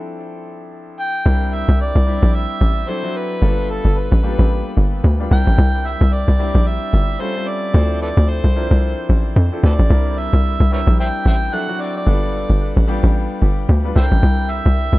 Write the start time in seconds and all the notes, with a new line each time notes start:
Already playing: F3 C4 D4 E4 A4
1.00 G5
1.25 C2 G3 C4 D4 E4 A#4
1.54 E5
1.68 C2
1.81 D5
1.95 C2
2.06 G3 C4 D4 E4 G4
2.23 A#1
2.35 E5
2.61 A1
2.87 F#3 C4 D4 E4 A4 C5
3.03 F#3 C4 D4 E4 F#4
3.16 B4
3.41 G1 G3 A#3 D4 F4 A4
3.48 B3
3.70 A4
3.85 G1
3.97 B4
4.12 A1
4.23 G3 A#3 D4 F4 G4
4.30 B3
4.39 A1
4.77 G1
5.04 D2
5.20 G3 B3 D4 F4 G4
5.31 C2 G3 C4 D4 E4 A#4 G5
5.47 A1
5.58 C2
5.86 E5
6.01 C2
6.13 D5
6.28 C2
6.39 G3 C4 D4 E4 G4
6.55 A#1
6.67 E5
6.93 G1
7.20 G3 C4 C#4 F4 A4 C5
7.36 G3 C4 C#4 F4 A4
7.48 D5
7.74 D2 F3 C4 D4 E4 A4
8.02 A4 B4 D5
8.17 D2
8.29 C5
8.44 C2
8.55 F3 C4 D4 E4 A#4
8.63 C5
8.71 C2
9.09 A1
9.36 F2
9.52 F3 C4 D4 E4 A4
9.63 D2 A4 B4 D5
9.79 A1
9.90 C2 G3 C4 D4 E4 A#4
10.19 E5
10.33 C2
10.60 C2
10.71 G3 C4 D4 E4 A#4 B4 C#5 E5
10.87 A#1
11.00 C5 E5 G5
11.26 A1 C5 E5 G5
11.52 F#3 C4 D4 E4 A4 F#5
11.68 F#3 C4 D4 E4 F#4
11.81 D5
11.97 D5
12.07 G1 G3 B3 D4 F4 A4
12.50 G1
12.77 A1
12.88 G3 B3 D4 F4 G4
13.03 A1
13.42 G1
13.69 D2
13.84 G3 B3 D4 F4 B4
13.95 C2 G3 C4 D4 E4 A4 C5 E5 G5
14.03 A#4
14.12 A1
14.23 C2
14.51 E5
14.66 C2
14.93 C2